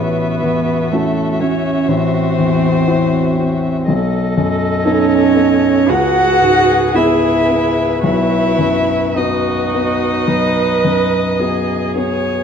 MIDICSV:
0, 0, Header, 1, 6, 480
1, 0, Start_track
1, 0, Tempo, 983607
1, 1889, Time_signature, 4, 2, 24, 8
1, 2364, Tempo, 1043478
1, 2844, Tempo, 1073345
1, 3804, Tempo, 1123596
1, 5684, End_track
2, 0, Start_track
2, 0, Title_t, "Violin"
2, 0, Program_c, 0, 40
2, 0, Note_on_c, 0, 76, 50
2, 1872, Note_off_c, 0, 76, 0
2, 1888, Note_on_c, 0, 75, 53
2, 2825, Note_off_c, 0, 75, 0
2, 2841, Note_on_c, 0, 71, 66
2, 5612, Note_off_c, 0, 71, 0
2, 5684, End_track
3, 0, Start_track
3, 0, Title_t, "Violin"
3, 0, Program_c, 1, 40
3, 0, Note_on_c, 1, 71, 56
3, 459, Note_on_c, 1, 69, 60
3, 466, Note_off_c, 1, 71, 0
3, 685, Note_on_c, 1, 73, 52
3, 693, Note_off_c, 1, 69, 0
3, 921, Note_on_c, 1, 72, 69
3, 929, Note_off_c, 1, 73, 0
3, 1886, Note_off_c, 1, 72, 0
3, 2364, Note_on_c, 1, 73, 76
3, 2849, Note_on_c, 1, 78, 99
3, 2856, Note_off_c, 1, 73, 0
3, 3323, Note_on_c, 1, 76, 72
3, 3330, Note_off_c, 1, 78, 0
3, 3804, Note_off_c, 1, 76, 0
3, 3807, Note_on_c, 1, 76, 76
3, 4290, Note_on_c, 1, 75, 61
3, 4297, Note_off_c, 1, 76, 0
3, 5478, Note_off_c, 1, 75, 0
3, 5480, Note_on_c, 1, 73, 71
3, 5684, Note_off_c, 1, 73, 0
3, 5684, End_track
4, 0, Start_track
4, 0, Title_t, "Viola"
4, 0, Program_c, 2, 41
4, 0, Note_on_c, 2, 66, 47
4, 1871, Note_off_c, 2, 66, 0
4, 1884, Note_on_c, 2, 69, 64
4, 2823, Note_off_c, 2, 69, 0
4, 2843, Note_on_c, 2, 68, 65
4, 3785, Note_off_c, 2, 68, 0
4, 3803, Note_on_c, 2, 66, 48
4, 4222, Note_off_c, 2, 66, 0
4, 4289, Note_on_c, 2, 66, 61
4, 4764, Note_on_c, 2, 71, 67
4, 4771, Note_off_c, 2, 66, 0
4, 5240, Note_on_c, 2, 68, 52
4, 5247, Note_off_c, 2, 71, 0
4, 5684, Note_off_c, 2, 68, 0
4, 5684, End_track
5, 0, Start_track
5, 0, Title_t, "Cello"
5, 0, Program_c, 3, 42
5, 0, Note_on_c, 3, 59, 72
5, 449, Note_on_c, 3, 57, 63
5, 457, Note_off_c, 3, 59, 0
5, 681, Note_on_c, 3, 61, 62
5, 689, Note_off_c, 3, 57, 0
5, 922, Note_on_c, 3, 60, 69
5, 929, Note_off_c, 3, 61, 0
5, 1886, Note_off_c, 3, 60, 0
5, 2372, Note_on_c, 3, 61, 93
5, 2845, Note_on_c, 3, 66, 99
5, 2851, Note_off_c, 3, 61, 0
5, 3321, Note_on_c, 3, 64, 75
5, 3328, Note_off_c, 3, 66, 0
5, 3806, Note_off_c, 3, 64, 0
5, 3809, Note_on_c, 3, 64, 84
5, 4285, Note_on_c, 3, 63, 65
5, 4292, Note_off_c, 3, 64, 0
5, 5482, Note_off_c, 3, 63, 0
5, 5684, End_track
6, 0, Start_track
6, 0, Title_t, "Grand piano"
6, 0, Program_c, 4, 0
6, 0, Note_on_c, 4, 33, 47
6, 40, Control_c, 4, 64, 127
6, 205, Note_on_c, 4, 40, 37
6, 451, Note_on_c, 4, 61, 41
6, 456, Note_on_c, 4, 64, 41
6, 456, Note_on_c, 4, 66, 44
6, 591, Note_off_c, 4, 40, 0
6, 669, Note_off_c, 4, 61, 0
6, 671, Note_off_c, 4, 64, 0
6, 672, Note_off_c, 4, 66, 0
6, 691, Note_on_c, 4, 61, 42
6, 907, Note_off_c, 4, 33, 0
6, 918, Note_on_c, 4, 33, 56
6, 928, Note_off_c, 4, 61, 0
6, 935, Control_c, 4, 64, 0
6, 1027, Control_c, 4, 64, 127
6, 1164, Note_on_c, 4, 40, 44
6, 1401, Note_on_c, 4, 60, 42
6, 1402, Note_on_c, 4, 66, 46
6, 1405, Note_on_c, 4, 64, 44
6, 1549, Note_off_c, 4, 40, 0
6, 1624, Note_off_c, 4, 60, 0
6, 1625, Note_off_c, 4, 66, 0
6, 1626, Note_off_c, 4, 64, 0
6, 1647, Note_on_c, 4, 60, 55
6, 1865, Note_off_c, 4, 33, 0
6, 1889, Note_off_c, 4, 60, 0
6, 1894, Note_on_c, 4, 35, 57
6, 1897, Control_c, 4, 64, 0
6, 1986, Control_c, 4, 64, 127
6, 2134, Note_on_c, 4, 42, 51
6, 2367, Note_on_c, 4, 63, 54
6, 2368, Note_on_c, 4, 59, 45
6, 2370, Note_on_c, 4, 69, 57
6, 2504, Note_off_c, 4, 42, 0
6, 2580, Note_off_c, 4, 63, 0
6, 2581, Note_off_c, 4, 59, 0
6, 2582, Note_off_c, 4, 69, 0
6, 2595, Note_on_c, 4, 59, 47
6, 2828, Note_off_c, 4, 35, 0
6, 2843, Note_off_c, 4, 59, 0
6, 2846, Note_on_c, 4, 37, 63
6, 2851, Control_c, 4, 64, 0
6, 2922, Control_c, 4, 64, 127
6, 3081, Note_on_c, 4, 44, 46
6, 3314, Note_on_c, 4, 59, 46
6, 3314, Note_on_c, 4, 64, 48
6, 3317, Note_on_c, 4, 68, 48
6, 3460, Note_off_c, 4, 44, 0
6, 3537, Note_off_c, 4, 59, 0
6, 3537, Note_off_c, 4, 64, 0
6, 3539, Note_off_c, 4, 68, 0
6, 3557, Note_on_c, 4, 59, 46
6, 3787, Note_off_c, 4, 37, 0
6, 3804, Note_off_c, 4, 59, 0
6, 3804, Note_on_c, 4, 35, 60
6, 3813, Control_c, 4, 64, 0
6, 3884, Control_c, 4, 64, 127
6, 4040, Note_on_c, 4, 42, 44
6, 4285, Note_on_c, 4, 59, 43
6, 4288, Note_on_c, 4, 66, 44
6, 4292, Note_on_c, 4, 71, 47
6, 4431, Note_off_c, 4, 42, 0
6, 4510, Note_off_c, 4, 59, 0
6, 4511, Note_off_c, 4, 66, 0
6, 4513, Note_off_c, 4, 71, 0
6, 4534, Note_on_c, 4, 59, 40
6, 4748, Note_off_c, 4, 35, 0
6, 4761, Note_on_c, 4, 35, 42
6, 4909, Note_off_c, 4, 59, 0
6, 5004, Note_on_c, 4, 42, 41
6, 5239, Note_on_c, 4, 59, 37
6, 5241, Note_on_c, 4, 66, 37
6, 5241, Note_on_c, 4, 71, 43
6, 5386, Note_off_c, 4, 42, 0
6, 5466, Note_off_c, 4, 59, 0
6, 5467, Note_off_c, 4, 66, 0
6, 5467, Note_off_c, 4, 71, 0
6, 5479, Note_on_c, 4, 59, 47
6, 5684, Note_off_c, 4, 35, 0
6, 5684, Note_off_c, 4, 59, 0
6, 5684, End_track
0, 0, End_of_file